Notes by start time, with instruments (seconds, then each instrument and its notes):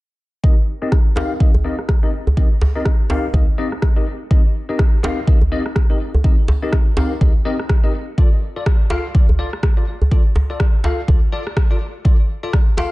0.44 tine electric piano C4 D#4 G4 A#4 D#5, kick
0.82 tine electric piano C4 D#4 G4 A#4 D#5
0.92 kick, cross-stick
1.16 tine electric piano C4 D#4 G4 A#4 F5, djembe slap, djembe tone
1.40 tine electric piano C4 D#4 G4 A#4 D#5, kick
1.54 djembe bass
1.64 tine electric piano C4 D#4 G4 A#4 D#5
1.79 cross-stick
1.89 kick, cross-stick
2.03 tine electric piano C4 D#4 G4 A#4 D#5
2.27 djembe bass
2.37 tine electric piano C4 D#4 G4 A#4 D#5, kick
2.61 djembe slap, djembe bass
2.76 tine electric piano C4 D#4 G4 A#4 D#5
2.85 kick, cross-stick
3.10 tine electric piano C4 D#4 G4 A#4 F5, djembe slap, djembe tone
3.34 tine electric piano C4 D#4 G4 A#4 D#5, kick, djembe bass
3.58 tine electric piano C4 D#4 G4 A#4 D#5
3.72 cross-stick
3.82 kick, cross-stick
3.96 tine electric piano C4 D#4 G4 A#4 D#5
4.31 tine electric piano C4 D#4 G4 A#4 D#5, kick
4.69 tine electric piano C4 D#4 G4 A#4 D#5
4.79 kick, cross-stick
5.03 tine electric piano C4 D#4 G4 A#4 F5, djembe slap, djembe tone
5.27 tine electric piano C4 D#4 G4 A#4 D#5, kick
5.42 djembe bass
5.52 tine electric piano C4 D#4 G4 A#4 D#5
5.66 cross-stick
5.76 kick, cross-stick
5.90 tine electric piano C4 D#4 G4 A#4 D#5
6.14 djembe bass
6.24 tine electric piano C4 D#4 G4 A#4 D#5, kick
6.48 djembe slap, djembe bass
6.63 tine electric piano C4 D#4 G4 A#4 D#5
6.73 kick, cross-stick
6.97 tine electric piano C4 D#4 G4 A#4 F5, djembe slap, djembe tone
7.21 tine electric piano C4 D#4 G4 A#4 D#5, kick, djembe bass
7.45 tine electric piano C4 D#4 G4 A#4 D#5
7.60 cross-stick
7.69 kick, cross-stick
7.84 tine electric piano C4 D#4 G4 A#4 D#5
8.18 tine electric piano F4 A4 D5, kick
8.56 tine electric piano F4 A4 D5
8.66 kick, cross-stick
8.90 tine electric piano F4 A4 F5, djembe slap, djembe tone
9.15 tine electric piano F4 A4 D5, kick
9.29 djembe bass
9.39 tine electric piano F4 A4 D5
9.53 cross-stick
9.63 kick, cross-stick
9.77 tine electric piano F4 A4 D5
10.02 djembe bass
10.11 tine electric piano F4 A4 D5, kick
10.36 djembe slap, djembe bass
10.50 tine electric piano F4 A4 D5
10.60 kick, cross-stick
10.84 tine electric piano F4 A4 F5, djembe slap, djembe tone
11.08 tine electric piano F4 A4 D5, kick, djembe bass
11.32 tine electric piano F4 A4 D5
11.47 cross-stick
11.57 kick, cross-stick
11.71 tine electric piano F4 A4 D5
12.05 tine electric piano F4 A4 D5, kick
12.43 tine electric piano F4 A4 D5
12.53 kick, cross-stick
12.77 tine electric piano F4 A4 F5, djembe slap, djembe tone